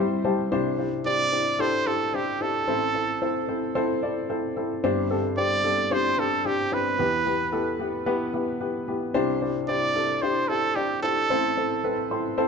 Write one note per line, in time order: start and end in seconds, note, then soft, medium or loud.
0.00 0.21 C2 medium
0.00 0.21 C3 medium
0.00 0.25 G3 loud
0.00 0.24 C4 loud
0.00 0.24 E4 loud
0.00 0.24 G4 medium
0.00 0.25 C5 loud
0.00 0.54 E5 medium
0.00 0.23 G5 medium
0.24 0.44 G3 medium
0.24 0.44 C4 medium
0.24 0.44 E4 medium
0.24 0.44 G4 medium
0.24 0.44 C5 medium
0.24 0.50 A5 medium
0.51 2.63 C2 medium
0.51 2.63 C3 medium
0.51 0.71 D4 loud
0.51 0.71 E4 medium
0.51 0.71 G4 medium
0.51 0.71 C5 loud
0.79 0.98 D4 medium
0.79 0.98 E4 medium
0.79 0.98 G4 medium
0.79 0.98 C5 medium
1.06 1.25 D4 medium
1.06 1.25 E4 medium
1.06 1.25 G4 medium
1.06 1.25 C5 medium
1.06 1.62 D5 loud
1.32 1.52 D4 medium
1.32 1.52 E4 medium
1.32 1.52 G4 medium
1.32 1.52 C5 medium
1.59 1.79 D4 medium
1.59 1.79 E4 medium
1.59 1.79 G4 medium
1.59 1.79 A4 medium
1.59 1.89 C5 medium
1.86 2.06 D4 medium
1.86 2.06 E4 medium
1.86 2.06 G4 medium
1.86 2.16 A4 medium
1.86 2.06 C5 medium
2.14 2.33 D4 medium
2.14 2.33 E4 medium
2.14 2.33 G4 medium
2.14 2.44 G4 medium
2.14 2.33 C5 medium
2.41 2.60 D4 medium
2.41 2.60 E4 medium
2.41 2.60 G4 medium
2.41 3.49 A4 medium
2.41 2.60 C5 medium
2.68 4.79 A1 medium
2.68 4.79 A2 medium
2.68 2.87 C4 medium
2.68 2.87 E4 medium
2.68 2.87 A4 medium
2.68 2.87 C5 medium
2.95 3.14 C4 medium
2.95 3.14 E4 medium
2.95 3.14 A4 medium
2.95 3.14 C5 medium
3.22 3.41 C4 medium
3.22 3.41 E4 medium
3.22 3.41 A4 medium
3.22 3.41 C5 medium
3.49 3.68 C4 medium
3.49 3.68 E4 medium
3.49 3.68 A4 medium
3.49 3.68 C5 medium
3.75 3.95 C4 loud
3.75 3.95 E4 medium
3.75 3.95 A4 medium
3.75 3.95 C5 loud
4.03 4.22 C4 medium
4.03 4.22 E4 medium
4.03 4.22 A4 medium
4.03 4.22 D5 medium
4.30 4.49 C4 medium
4.30 4.49 E4 medium
4.30 4.49 A4 medium
4.30 4.49 C5 medium
4.57 4.76 C4 medium
4.57 4.76 E4 medium
4.57 4.76 A4 medium
4.57 4.76 C5 medium
4.84 6.95 G1 medium
4.84 6.95 G2 medium
4.84 5.03 C4 loud
4.84 5.03 D4 loud
4.84 5.03 G4 medium
4.84 5.03 C5 loud
5.10 5.29 C4 medium
5.10 5.30 D4 medium
5.10 5.29 G4 medium
5.10 5.30 A4 medium
5.37 5.56 C4 medium
5.37 5.56 D4 medium
5.37 5.56 G4 medium
5.37 5.56 C5 medium
5.37 5.94 D5 loud
5.64 5.83 C4 medium
5.64 5.83 D4 medium
5.64 5.83 G4 medium
5.64 5.83 A4 medium
5.91 6.10 C4 medium
5.91 6.10 D4 medium
5.91 6.10 G4 medium
5.91 6.10 C5 loud
5.91 6.21 C5 medium
6.18 6.37 C4 medium
6.18 6.37 D4 medium
6.18 6.37 G4 medium
6.18 6.48 A4 medium
6.18 6.37 C5 medium
6.45 6.64 C4 medium
6.45 6.64 D4 medium
6.45 6.64 G4 medium
6.45 6.75 G4 medium
6.45 6.64 C5 medium
6.72 6.91 C4 medium
6.72 6.91 D4 medium
6.72 6.91 G4 medium
6.72 7.81 B4 medium
6.72 6.91 C5 medium
6.99 9.10 E2 medium
6.99 9.10 E3 medium
6.99 7.18 B3 medium
6.99 7.18 E4 medium
6.99 7.18 G4 medium
6.99 7.18 B4 loud
7.26 7.45 B3 medium
7.26 7.45 E4 medium
7.26 7.45 G4 medium
7.26 7.45 B4 medium
7.52 7.72 B3 medium
7.52 7.72 E4 medium
7.52 7.72 G4 medium
7.52 7.72 A4 medium
7.79 7.99 B3 medium
7.79 7.99 E4 medium
7.79 7.99 G4 medium
7.79 7.99 B4 medium
8.06 8.26 B3 loud
8.06 8.26 E4 medium
8.06 8.26 G4 medium
8.06 8.26 B4 loud
8.34 8.53 B3 medium
8.34 8.53 E4 medium
8.34 8.53 G4 medium
8.34 8.53 B4 medium
8.60 8.80 B3 medium
8.60 8.80 E4 medium
8.60 8.80 G4 medium
8.60 8.80 B4 medium
8.88 9.07 B3 medium
8.88 9.07 E4 medium
8.88 9.07 G4 medium
8.88 9.07 B4 medium
9.14 11.26 C2 medium
9.14 11.26 C3 medium
9.14 9.34 D4 loud
9.14 9.34 E4 loud
9.14 9.34 G4 loud
9.14 9.34 C5 loud
9.41 9.61 D4 medium
9.41 9.61 E4 medium
9.41 9.61 G4 medium
9.41 9.61 C5 medium
9.68 9.88 D4 medium
9.68 9.88 E4 medium
9.68 9.88 G4 medium
9.68 9.88 C5 medium
9.68 10.24 D5 medium
9.95 10.15 D4 medium
9.95 10.15 E4 medium
9.95 10.15 G4 medium
9.95 10.15 A4 medium
10.22 10.41 D4 medium
10.22 10.42 E4 medium
10.22 10.42 G4 medium
10.22 10.50 C5 medium
10.22 10.42 C5 medium
10.48 10.69 D4 medium
10.48 10.69 E4 medium
10.48 10.69 G4 medium
10.48 10.77 A4 medium
10.48 10.69 C5 medium
10.76 10.95 D4 medium
10.76 10.95 E4 medium
10.76 11.02 G4 medium
10.76 10.95 G4 medium
10.76 10.95 D5 medium
11.03 11.22 D4 medium
11.03 11.22 E4 medium
11.03 11.22 G4 medium
11.03 12.07 A4 medium
11.03 11.22 C5 medium
11.30 12.48 A1 medium
11.30 12.48 A2 medium
11.30 11.49 C4 medium
11.30 11.49 E4 medium
11.30 11.49 A4 medium
11.30 11.49 C5 loud
11.57 11.76 C4 medium
11.57 11.76 E4 medium
11.57 11.76 A4 medium
11.57 11.76 C5 medium
11.84 12.03 C4 medium
11.84 12.03 E4 medium
11.84 12.03 A4 medium
11.84 12.03 B4 medium
12.11 12.30 C4 medium
12.11 12.30 E4 medium
12.11 12.30 A4 medium
12.11 12.30 C5 medium
12.11 12.36 C6 medium
12.38 12.48 C4 loud
12.38 12.48 E4 medium
12.38 12.48 A4 medium
12.38 12.48 C5 loud
12.38 12.48 A5 medium